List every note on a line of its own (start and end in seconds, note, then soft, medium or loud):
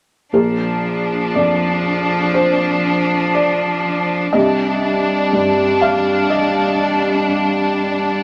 0.33 4.30 A#1 soft
0.33 4.30 F3 soft
0.33 4.31 D4 soft
0.33 1.31 A#4 soft
1.35 4.34 F2 soft
1.35 2.31 D5 medium
2.34 3.30 C5 medium
3.34 4.30 D5 medium
4.33 8.23 C2 soft
4.33 8.23 G3 soft
4.33 8.23 D4 medium
4.33 5.77 D#5 medium
5.33 8.23 G2 soft
5.81 6.27 F5 medium
6.30 8.23 D#5 medium